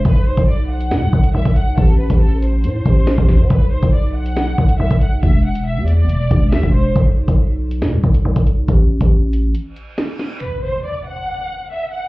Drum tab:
HH |x--x---x---x-xx-|x--x--x-x-x-x---|x--x---x---x-xx-|x--x--x-x-x-x---|
SD |--------o-------|------------o-o-|--------o-------|------------o---|
BD |o--o------o--o--|o--o------o--oo-|o--o------o--o--|o---------o--o--|

HH |x--x---x---x-xx-|x--x--x-x-x-x---|----------------|
SD |--------o-------|------------o-o-|----------------|
BD |o--o------o--o--|o--o------------|----------------|